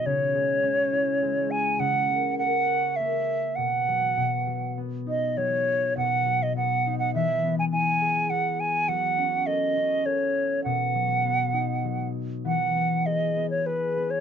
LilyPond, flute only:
\new Staff \with { instrumentName = "Flute" } { \time 3/4 \key e \major \tempo 4 = 102 cis''2~ cis''8 gis''8 | fis''4 fis''4 e''4 | fis''2 r8 dis''8 | cis''4 fis''8. dis''16 fis''8. fis''16 |
e''8. gis''16 gis''4 fis''8 gis''8 | fis''4 dis''4 cis''4 | fis''2~ fis''8 r8 | fis''4 dis''8. cis''16 b'8. cis''16 | }